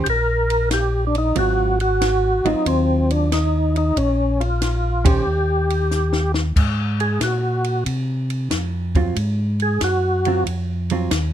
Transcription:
0.04 1.32 A#1 medium
0.04 0.08 G4 medium
0.04 kick soft
0.04 ride medium
0.10 0.69 A#4 loud
0.50 ride soft
0.71 1.05 G4 medium
0.71 snare medium
0.71 hi-hat pedal medium
0.71 ride medium
1.07 1.16 D4 medium
1.15 1.37 D#4 medium
1.15 ride soft
1.35 2.41 G#1 loud
1.35 1.76 F#3 medium
1.35 1.76 C4 medium
1.35 1.76 F4 medium
1.35 1.79 F#4 loud
1.35 kick soft
1.35 ride medium
1.80 2.48 F#4 medium
1.80 ride soft
2.01 snare medium
2.01 hi-hat pedal soft
2.01 ride medium
2.44 2.55 G#1 soft
2.44 3.27 F#3 medium
2.44 3.28 C4 medium
2.44 2.67 D#4 medium
2.44 3.28 F4 medium
2.44 ride soft
2.66 3.92 D#2 medium
2.66 3.12 C4 medium
2.66 kick soft
2.66 ride medium
3.11 3.31 D4 medium
3.11 ride soft
3.32 3.76 D#4 medium
3.32 snare medium
3.32 hi-hat pedal medium
3.32 ride medium
3.76 3.98 D#4 medium
3.76 ride soft
3.96 5.23 A#1 medium
3.96 4.42 C#4 medium
3.96 kick soft
3.96 ride medium
4.40 5.07 F4 medium
4.40 ride soft
4.62 snare medium
4.62 hi-hat pedal medium
4.62 ride medium
5.04 5.24 D#3 medium
5.04 5.24 C#4 medium
5.04 5.24 G4 medium
5.04 6.32 G4 medium
5.04 5.25 C5 medium
5.04 kick medium
5.04 ride medium
5.26 6.53 D#2 medium
5.70 ride soft
5.91 snare soft
5.91 hi-hat pedal medium
6.13 snare medium
6.34 snare medium
6.56 7.19 G#2 medium
6.56 kick medium
6.56 crash medium
7.00 7.21 G#4 medium
7.00 ride soft
7.20 7.84 A#2 medium
7.20 7.84 F#4 medium
7.20 kick soft
7.20 snare medium
7.20 hi-hat pedal soft
7.20 ride medium
7.64 ride soft
7.85 8.49 C3 medium
7.85 kick soft
7.85 ride medium
8.30 ride soft
8.50 9.14 F2 medium
8.50 kick soft
8.50 snare medium
8.50 hi-hat pedal medium
8.50 ride medium
8.95 9.15 F#3 medium
8.95 9.15 C4 medium
8.95 9.15 F4 medium
8.95 kick medium
8.95 ride soft
9.16 9.79 G#2 medium
9.16 kick soft
9.16 ride medium
9.60 9.82 G#4 medium
9.60 ride soft
9.81 10.44 F#2 medium
9.81 10.44 F#4 medium
9.81 kick soft
9.81 snare medium
9.81 hi-hat pedal soft
9.81 ride medium
10.25 10.45 F#3 medium
10.25 10.46 C4 medium
10.25 10.46 F4 medium
10.25 ride soft
10.46 11.09 F2 medium
10.46 kick soft
10.46 ride medium
10.90 11.10 F#3 medium
10.90 11.10 C4 medium
10.90 11.10 F4 medium
10.90 ride soft
11.11 11.33 D#2 medium
11.11 kick soft
11.11 snare medium
11.11 hi-hat pedal medium
11.11 ride medium

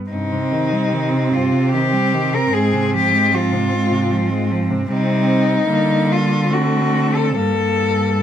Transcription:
0.10 0.34 G2 soft
0.10 2.50 C3 soft
0.10 4.87 C4 soft
0.10 1.34 D#4 medium
0.32 0.53 C3 soft
0.51 0.73 D#3 soft
0.72 0.94 G3 soft
0.92 1.14 D#3 soft
1.13 1.33 C3 soft
1.32 1.53 G2 soft
1.32 1.70 F4 soft
1.52 1.74 C3 soft
1.71 1.94 D#3 soft
1.71 2.36 G4 medium
1.92 2.14 G3 soft
2.13 2.35 D#3 soft
2.33 2.54 C3 soft
2.33 2.55 A#4 medium
2.54 4.88 G#2 soft
2.54 2.75 G#2 soft
2.54 2.94 G#4 medium
2.73 2.95 C3 soft
2.93 3.14 F3 soft
2.93 3.36 G4 medium
3.13 3.34 G#3 soft
3.33 3.54 F3 soft
3.33 4.53 F4 medium
3.53 3.73 C3 soft
3.72 3.93 G#2 soft
3.91 4.13 C3 soft
4.11 4.32 F3 soft
4.30 4.52 G#3 soft
4.51 4.72 F3 soft
4.70 4.89 C3 soft
4.89 5.67 C3 soft
4.89 5.66 G3 soft
4.89 5.67 C4 soft
4.89 6.14 D#4 medium
5.69 7.38 D3 soft
5.69 6.52 G3 soft
5.69 6.49 A#3 soft
6.12 6.54 F4 medium
6.50 7.36 A3 soft
6.50 7.37 C4 soft
6.50 7.16 F#4 medium
7.15 7.35 A4 soft
7.36 8.23 G2 soft
7.36 8.22 G3 soft
7.36 8.21 A#3 soft
7.36 8.23 A4 medium

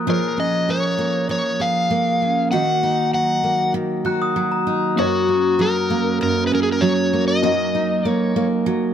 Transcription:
0.00 0.10 A#3 medium
0.06 2.48 F3 medium
0.06 1.28 F3 medium
0.06 2.49 A#3 medium
0.06 1.59 G#4 medium
0.06 2.49 G#4 medium
0.06 2.50 C#5 medium
0.10 0.37 A#4 medium
0.38 2.21 C#4 medium
0.38 0.70 D#5 medium
0.69 0.98 A#3 medium
0.69 1.30 C#5 medium
0.98 1.90 A#3 medium
1.29 2.59 F3 medium
1.29 1.62 C#5 medium
1.60 2.52 G#4 medium
1.60 2.51 F5 medium
1.91 3.43 A#3 medium
2.22 2.59 C#4 medium
2.50 3.73 D#3 medium
2.50 4.93 A#3 medium
2.50 4.94 F#4 medium
2.50 4.04 F#4 medium
2.50 4.95 D#5 medium
2.50 3.13 F#5 loud
2.83 4.66 D#4 medium
3.13 4.36 F#3 medium
3.13 3.72 F#5 medium
3.43 5.90 A#3 medium
3.74 5.04 D#3 medium
4.05 7.55 F#4 medium
4.05 4.21 A#5 medium
4.05 4.21 F#6 medium
4.22 4.51 D#6 medium
4.36 5.59 F#3 medium
4.52 4.96 A#5 medium
4.67 5.04 D#4 medium
4.95 6.20 F#2 medium
4.95 7.38 A#3 medium
4.95 7.39 C#4 medium
4.95 7.40 F#4 medium
4.95 5.62 F#4 medium
5.00 7.41 C#5 medium
5.28 6.51 C#4 medium
5.59 6.81 F#3 medium
5.59 6.18 A#4 medium
5.90 7.13 A#3 medium
6.21 7.50 F#2 medium
6.21 6.47 A#4 medium
6.47 6.54 B4 medium
6.52 7.50 C#4 medium
6.52 6.63 A#4 medium
6.63 6.72 G#4 medium
6.72 6.82 A#4 medium
6.81 7.43 F#3 medium
6.81 7.27 C#5 loud
7.13 8.05 A#3 medium
7.28 8.10 D#5 medium
7.43 8.94 F#2 medium
7.43 8.65 F#3 medium
7.43 8.94 A#3 medium
7.43 8.94 D#4 medium
7.43 8.94 F#4 medium
7.43 8.94 D#5 medium
7.75 8.94 D#4 medium
8.05 8.36 A#3 medium
8.10 8.47 C#5 medium
8.36 8.94 A#3 medium
8.66 8.94 F#3 medium

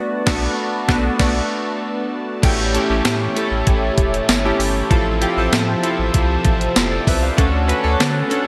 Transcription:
0.00 0.26 A3 medium
0.00 0.26 B3 medium
0.00 0.26 D4 medium
0.00 0.27 F#4 medium
0.00 2.41 F#4 medium
0.00 2.40 B4 medium
0.00 2.41 D5 medium
0.00 2.41 A5 medium
0.26 0.48 B1 loud
0.26 0.47 A3 loud
0.26 0.48 B3 loud
0.26 0.48 D4 medium
0.26 0.48 F#4 loud
0.26 kick loud
0.26 snare loud
0.26 crash medium
0.88 1.10 B1 loud
0.88 1.09 A3 medium
0.88 1.09 B3 loud
0.88 1.10 D4 loud
0.88 1.10 F#4 loud
0.88 kick loud
0.88 snare loud
1.19 1.41 B1 loud
1.19 1.40 A3 loud
1.19 1.41 B3 loud
1.19 1.41 D4 loud
1.19 1.41 F#4 loud
1.19 kick loud
1.19 snare loud
1.19 crash medium
2.42 2.78 A1 loud
2.42 3.36 A2 medium
2.42 3.38 E3 loud
2.42 2.70 A3 medium
2.42 3.35 A3 medium
2.42 2.70 C#4 medium
2.42 2.71 E4 medium
2.42 4.88 G4 medium
2.42 2.71 G4 medium
2.42 4.88 C#5 medium
2.42 4.88 E5 medium
2.42 8.47 A5 loud
2.42 kick loud
2.42 closed hi-hat medium
2.42 crash medium
2.74 2.88 A3 medium
2.74 2.88 C#4 medium
2.74 2.88 E4 medium
2.74 2.89 G4 medium
2.74 closed hi-hat medium
2.90 3.01 A1 medium
2.90 3.31 A3 medium
2.90 3.31 C#4 medium
2.90 3.31 E4 medium
2.90 3.31 G4 medium
3.05 3.28 A2 loud
3.05 snare loud
3.05 closed hi-hat medium
3.05 tambourine medium
3.35 3.66 E3 soft
3.35 3.67 A3 medium
3.35 4.31 A3 medium
3.35 4.31 C#4 medium
3.35 4.31 E4 medium
3.35 4.32 A4 medium
3.35 closed hi-hat medium
3.51 3.63 A1 medium
3.66 3.90 A1 loud
3.66 4.27 A2 medium
3.66 4.29 E3 medium
3.66 4.30 A3 medium
3.66 kick medium
3.66 closed hi-hat medium
3.98 4.21 E1 medium
3.98 kick medium
3.98 closed hi-hat medium
4.14 closed hi-hat medium
4.28 4.52 G1 loud
4.28 4.90 A2 medium
4.28 4.91 E3 medium
4.28 7.39 A3 medium
4.28 snare loud
4.28 closed hi-hat medium
4.28 tambourine medium
4.44 4.85 A3 medium
4.44 4.85 C#4 medium
4.44 4.86 E4 medium
4.44 4.86 G4 loud
4.59 4.83 G1 medium
4.59 open hi-hat medium
4.89 5.26 A1 loud
4.89 5.83 F2 medium
4.89 5.84 C3 medium
4.89 7.35 F3 medium
4.89 5.82 F3 medium
4.89 5.18 C4 medium
4.89 5.18 E4 medium
4.89 5.18 F4 medium
4.89 5.18 A4 loud
4.89 7.35 C5 medium
4.89 7.35 E5 medium
4.89 kick loud
4.89 closed hi-hat medium
5.21 5.35 C4 medium
5.21 5.35 E4 medium
5.21 5.36 F4 medium
5.21 5.36 G4 loud
5.21 closed hi-hat medium
5.37 5.49 A1 medium
5.37 5.78 C4 medium
5.37 5.78 E4 medium
5.37 5.78 F4 medium
5.37 5.78 A4 medium
5.52 5.76 A2 loud
5.52 snare loud
5.52 closed hi-hat medium
5.52 tambourine medium
5.83 6.14 C3 soft
5.83 6.14 F3 medium
5.83 6.78 C4 medium
5.83 6.78 E4 medium
5.83 6.79 F4 medium
5.83 6.77 A4 medium
5.83 closed hi-hat medium
5.99 6.11 A1 medium
6.13 6.38 C2 loud
6.13 6.74 F2 medium
6.13 6.76 C3 medium
6.13 6.78 F3 medium
6.13 kick medium
6.13 closed hi-hat medium
6.45 6.68 A1 medium
6.45 kick medium
6.45 closed hi-hat medium
6.61 closed hi-hat medium
6.76 7.00 F1 loud
6.76 7.38 F2 medium
6.76 7.38 C3 medium
6.76 7.39 F3 medium
6.76 6.92 G4 medium
6.76 6.91 C5 medium
6.76 snare loud
6.76 closed hi-hat medium
6.76 tambourine medium
6.91 7.06 A4 medium
6.91 7.06 D5 medium
7.07 7.31 C2 medium
7.07 7.23 B4 medium
7.07 7.22 E5 medium
7.07 kick medium
7.07 open hi-hat medium
7.22 7.52 C5 medium
7.22 7.52 F5 medium
7.37 7.73 D2 loud
7.37 8.31 D3 medium
7.37 8.34 A3 medium
7.37 7.65 C#4 medium
7.37 7.65 D4 medium
7.37 8.30 D4 medium
7.37 7.65 F#4 medium
7.37 8.47 F#4 medium
7.37 7.65 A4 loud
7.37 8.47 C#5 medium
7.37 8.47 F#5 medium
7.37 kick loud
7.37 closed hi-hat medium
7.68 7.82 C#4 medium
7.68 7.82 D4 medium
7.68 7.82 F#4 medium
7.68 7.82 B4 medium
7.68 closed hi-hat medium
7.83 7.96 D2 loud
7.83 8.24 C#4 medium
7.83 8.25 D4 medium
7.83 8.25 F#4 medium
7.83 8.25 A4 loud
8.00 8.23 D3 loud
8.00 snare loud
8.00 closed hi-hat medium
8.00 tambourine medium
8.29 8.47 C#4 medium
8.29 8.47 D4 medium
8.29 8.47 F#4 medium
8.29 8.47 A4 medium
8.29 closed hi-hat medium
8.34 8.47 A3 medium

